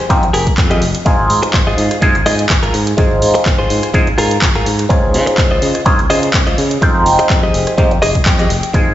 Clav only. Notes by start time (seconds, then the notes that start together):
0.09 G#3 C4 D#4 F4 G4
1.05 G#3 C4 D#4 F4 G#4
2.01 G#3 C4 D#4 F4 G#4
2.97 G#3 C4 D#4 F4 G#4
3.94 G#3 C4 D#4 F4 G#4
4.89 C4 C#4 D#4 F4 G#4
5.85 C4 C#4 D#4 F4 G#4
6.81 G#3 C4 D#4 F4 G5
7.78 G#3 C4 D#4 F4 G4
8.73 G#3 C4 D#4 F4 G#4